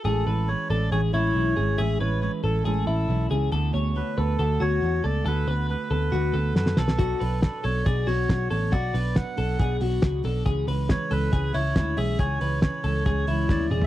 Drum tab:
HH |----------------|----------------|----------------|----------------|
SD |----------------|----------------|----------------|------------oooo|
T1 |----------------|----------------|----------------|----------------|
T2 |----------------|----------------|----------------|----------------|
FT |----------------|----------------|----------------|----------------|
BD |----------------|----------------|----------------|----------------|

HH |x-o-x-o-x-o-x-o-|x-o-x-o-x-o-x-o-|x-o-x-o-x-o-x-o-|x-o-x-o-x-o-----|
SD |----o-------o---|----o-------o---|----o-------o---|----o-------o---|
T1 |----------------|----------------|----------------|-------------o--|
T2 |----------------|----------------|----------------|--------------o-|
FT |----------------|----------------|----------------|---------------o|
BD |o---o---o---o---|o---o---o---o---|o---o---o---o---|o---o---o---o---|